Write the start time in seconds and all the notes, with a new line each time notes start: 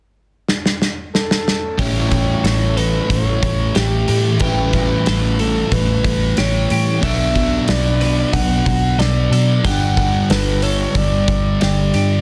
0.48 snare
0.66 snare
0.82 snare
1.13 A4, snare
1.31 snare
1.48 snare
1.79 A1 A2 E3 G3 A3 C#4 E4 G4 C#5, kick, open hi-hat
2.12 E3 A3, kick, open hi-hat
2.44 A1 A2 E3 A3 A4, snare, open hi-hat
2.77 E3 A3 A4 B4, open hi-hat
3.10 A1 A2 E3 A3 C#5, kick, open hi-hat
3.43 A1 E3 A3, kick, open hi-hat
3.75 A1 A2 E3 A3 G4, snare, open hi-hat
4.08 A2 E3 A3 G4, open hi-hat
4.40 A1 A2 E3 G3 C#4 G4 B4, kick, open hi-hat
4.44 A3 E4
4.73 E3 A3, kick, open hi-hat
5.06 A1 A2 E3 A3 A4, snare, open hi-hat
5.39 E3 A3 A4, open hi-hat
5.72 A1 A2 E3 A3 B4, kick, open hi-hat
6.04 A1 E3 A3, kick, open hi-hat
6.37 A1 A2 E3 A3 G4 C#5, snare, open hi-hat
6.70 A2 E3 A3 G4, open hi-hat
7.03 B1 B2 F#3 B3 D4 A4 E5, kick, open hi-hat
7.35 F#3 B3, kick, open hi-hat
7.68 B1 B2 F#3 B3 B4 D5, snare, open hi-hat
8.01 F#3 B3 B4, open hi-hat
8.33 B1 B2 F#3 B3 F#5, kick, open hi-hat
8.66 B1 F#3 B3, kick, open hi-hat
8.98 B1 B2 F#3 B3 A4 D5, snare, open hi-hat
9.31 B2 F#3 B3 A4, open hi-hat
9.65 G1 G2 D3 G3 B3 D4 G4 F#5, kick, open hi-hat
9.97 D3 G3, kick, open hi-hat
10.30 G1 G2 D3 G3 A4 B4, snare, open hi-hat
10.62 D3 G3 A4 C#5, open hi-hat
10.95 G1 G2 D3 G3 D5, kick, open hi-hat
11.28 G1 D3 G3, kick, open hi-hat
11.60 G1 G2 D3 G3 G4 D5, snare, open hi-hat
11.94 G2 D3 G3 G4, open hi-hat